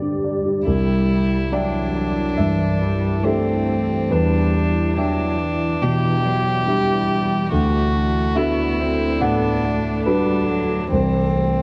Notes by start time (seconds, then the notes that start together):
Already playing: D3 G3 D4 G4 B4 D5
0.02 D4
0.24 D5
0.46 G4
0.67 C2 E3 G3 E4 D5
1.52 F#3 D4 D5 E5 G5
2.37 G2 E3 E5
2.81 G3
3.24 A3 C4 D4 G4 A4 E5
4.10 E2 E3 G3 D4 E4 B4 D5
4.96 F#3 D4 E5 G5
5.39 E3
5.81 B2 E3 G4
6.24 F#3
6.67 G3 D4 G4 E5
7.52 D2 A3 F#4 A4 D5
8.35 B3 D4 E4 F#4 A4 E5
8.80 C4
9.21 A2 B3 D4 F#5
9.65 A3
10.06 G3 D4 F#4 A4 B4
10.49 F#3
10.90 C2 E3 A3 C4 G4 C5 E5